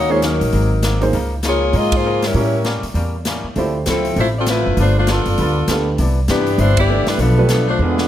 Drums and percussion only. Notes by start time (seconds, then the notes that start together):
0.22 snare, closed hi-hat
0.41 open hi-hat
0.52 open hi-hat
0.83 snare, closed hi-hat
1.02 open hi-hat
1.13 open hi-hat
1.43 snare, closed hi-hat
1.73 open hi-hat
1.92 kick, ride
2.22 snare, open hi-hat
2.34 open hi-hat
2.64 snare, closed hi-hat
2.83 open hi-hat
2.95 open hi-hat
3.25 snare, closed hi-hat
3.56 open hi-hat
3.86 snare, closed hi-hat
4.05 open hi-hat
4.16 open hi-hat
4.46 snare, closed hi-hat
4.77 open hi-hat
5.07 snare, closed hi-hat
5.25 open hi-hat
5.38 open hi-hat
5.68 snare, closed hi-hat
5.98 open hi-hat
6.28 snare, closed hi-hat
6.47 open hi-hat
6.58 open hi-hat
6.77 kick, ride
7.06 snare, open hi-hat
7.19 open hi-hat
7.49 snare, closed hi-hat
7.98 snare